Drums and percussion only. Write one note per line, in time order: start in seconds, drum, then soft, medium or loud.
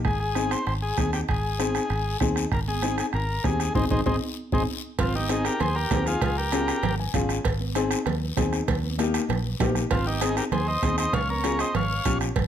0.05 bombo low medium
0.05 bombo rim medium
0.05 long guiro medium
0.35 bombo rim medium
0.35 high conga medium
0.35 short guiro medium
0.51 bombo rim medium
0.51 short guiro medium
0.67 bombo rim medium
0.67 long guiro medium
0.97 bombo low medium
0.97 bombo rim medium
0.97 high conga medium
0.97 short guiro medium
1.13 bombo rim medium
1.13 short guiro medium
1.28 bombo low medium
1.28 bombo rim medium
1.28 long guiro medium
1.60 bombo rim medium
1.60 high conga medium
1.60 short guiro medium
1.75 bombo rim medium
1.75 short guiro medium
1.90 bombo rim medium
1.90 long guiro medium
2.20 bombo low medium
2.20 bombo rim medium
2.20 high conga medium
2.20 short guiro medium
2.36 bombo rim medium
2.36 short guiro medium
2.52 bombo low medium
2.52 bombo rim medium
2.52 long guiro medium
2.68 high conga medium
2.82 bombo rim medium
2.82 high conga medium
2.82 short guiro medium
2.98 bombo rim medium
2.98 short guiro medium
3.13 bombo rim medium
3.13 long guiro medium
3.44 bombo low medium
3.44 bombo rim medium
3.44 high conga medium
3.44 short guiro medium
3.60 bombo rim medium
3.60 short guiro medium
3.75 bombo low medium
3.75 high conga medium
3.75 long guiro loud
3.90 bombo low medium
3.90 high conga medium
3.90 long guiro medium
4.06 bombo low medium
4.06 high conga loud
4.06 long guiro medium
4.52 bombo low loud
4.52 high conga medium
4.52 long guiro medium
4.99 bombo low medium
4.99 bombo rim medium
4.99 cowbell loud
4.99 low conga medium
4.99 long guiro medium
5.14 high conga medium
5.29 bombo rim medium
5.29 cowbell medium
5.29 high conga medium
5.29 short guiro medium
5.45 bombo rim medium
5.45 short guiro medium
5.60 bombo rim medium
5.60 cowbell medium
5.60 low conga medium
5.60 long guiro medium
5.91 bombo low medium
5.91 bombo rim medium
5.91 cowbell medium
5.91 high conga medium
5.91 low conga medium
5.91 low timbale medium
5.91 short guiro medium
6.06 bombo rim medium
6.06 short guiro medium
6.21 bombo low medium
6.21 bombo rim medium
6.21 cowbell loud
6.21 low conga medium
6.21 long guiro medium
6.52 bombo rim medium
6.52 cowbell medium
6.52 high conga medium
6.52 short guiro medium
6.68 bombo rim medium
6.68 short guiro medium
6.83 bombo rim medium
6.83 cowbell medium
6.83 low conga medium
6.83 long guiro medium
7.14 bombo low medium
7.14 bombo rim medium
7.14 cowbell medium
7.14 high conga medium
7.14 low conga medium
7.14 short guiro medium
7.29 bombo rim medium
7.29 short guiro medium
7.45 bombo low medium
7.45 bombo rim medium
7.45 cowbell loud
7.45 long guiro medium
7.60 high conga medium
7.75 bombo rim medium
7.75 cowbell medium
7.75 high conga medium
7.75 short guiro medium
7.91 bombo rim medium
7.91 short guiro medium
8.06 bombo rim medium
8.06 cowbell medium
8.06 low conga medium
8.06 long guiro medium
8.37 bombo low medium
8.37 bombo rim medium
8.37 cowbell medium
8.37 high conga medium
8.37 low conga medium
8.37 short guiro medium
8.53 bombo rim medium
8.53 short guiro medium
8.68 bombo low medium
8.68 bombo rim medium
8.68 cowbell loud
8.68 low conga medium
8.68 long guiro medium
8.83 high conga medium
8.98 bombo rim medium
8.98 cowbell medium
8.98 high conga medium
8.98 short guiro medium
9.14 bombo rim medium
9.14 short guiro medium
9.29 bombo rim medium
9.29 cowbell medium
9.29 low conga medium
9.29 long guiro medium
9.60 bombo low medium
9.60 bombo rim medium
9.60 cowbell medium
9.60 high conga medium
9.60 low conga medium
9.60 low timbale medium
9.60 short guiro medium
9.75 bombo rim medium
9.75 short guiro medium
9.91 bombo low medium
9.91 bombo rim medium
9.91 cowbell loud
9.91 low conga medium
9.91 long guiro medium
10.06 high conga medium
10.21 bombo rim medium
10.21 cowbell medium
10.21 high conga medium
10.21 short guiro medium
10.37 bombo rim medium
10.37 short guiro medium
10.52 bombo rim medium
10.52 cowbell medium
10.52 low conga medium
10.52 long guiro medium
10.83 bombo low medium
10.83 bombo rim medium
10.83 cowbell medium
10.83 high conga medium
10.83 short guiro medium
10.98 bombo rim medium
10.98 short guiro medium
11.13 bombo low medium
11.13 bombo rim medium
11.13 cowbell loud
11.13 low conga medium
11.13 long guiro medium
11.29 high conga medium
11.44 bombo rim medium
11.44 cowbell medium
11.44 high conga medium
11.44 short guiro medium
11.59 bombo rim medium
11.59 short guiro medium
11.75 bombo rim medium
11.75 cowbell medium
11.75 low conga medium
11.75 long guiro medium
12.05 bombo low medium
12.05 bombo rim medium
12.05 cowbell medium
12.05 high conga medium
12.05 low conga medium
12.05 short guiro medium
12.21 bombo rim medium
12.21 short guiro medium
12.36 bombo low medium
12.36 bombo rim medium
12.36 cowbell loud
12.36 low conga medium
12.36 long guiro medium